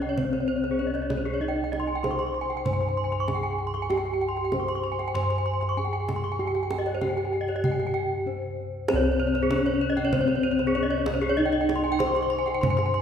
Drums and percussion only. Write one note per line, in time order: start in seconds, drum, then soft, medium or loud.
0.02 kendang slap soft
0.18 kendang low soft
0.33 kendang slap soft
0.64 kendang slap soft
0.95 kendang slap soft
1.10 kendang high soft
1.10 kendang low soft
1.26 kendang slap soft
1.73 kendang high soft
2.04 kendang high soft
2.04 kendang low soft
2.19 kendang slap soft
2.50 kendang slap soft
2.66 kendang low soft
2.81 kendang slap soft
3.12 kendang slap soft
3.28 kendang high soft
3.28 kendang low soft
3.44 kendang slap soft
3.74 kendang slap soft
3.90 kendang high soft
4.37 kendang slap soft
4.52 kendang high soft
4.52 kendang low soft
4.68 kendang slap soft
4.99 kendang slap soft
5.15 kendang low soft
5.30 kendang slap soft
5.62 kendang slap soft
5.93 kendang slap soft
6.09 kendang high soft
6.09 kendang low soft
6.24 kendang slap soft
6.55 kendang slap soft
6.71 kendang high soft
6.86 kendang slap soft
7.01 kendang high soft
7.01 kendang low soft
7.18 kendang slap soft
7.48 kendang slap soft
7.64 kendang low soft
7.80 kendang slap soft
8.88 kendang high soft
9.35 kendang slap soft
9.51 kendang high soft
9.51 kendang low soft
9.66 kendang slap soft
9.97 kendang slap soft
10.13 kendang low medium
10.27 kendang slap soft
10.59 kendang slap soft
10.90 kendang slap soft
11.06 kendang high soft
11.06 kendang low soft
11.23 kendang slap soft
11.69 kendang high soft
12.00 kendang high soft
12.00 kendang low soft
12.16 kendang slap soft
12.48 kendang slap soft
12.63 kendang low medium
12.78 kendang slap soft